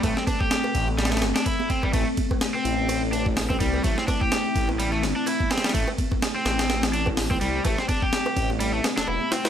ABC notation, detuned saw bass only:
X:1
M:4/4
L:1/16
Q:"Swing 16ths" 1/4=126
K:Am
V:1 name="Detuned saw bass" clef=bass
A,,, z4 z A,,,4 G,,, z4 z | A,,, z4 z A,,,8 C,,2 | A,,, z4 z A,,,4 G,,, z4 z | A,,, z4 z A,,,8 C,,2 |
A,,, z4 z A,,,4 z E,,, E,,, z3 |]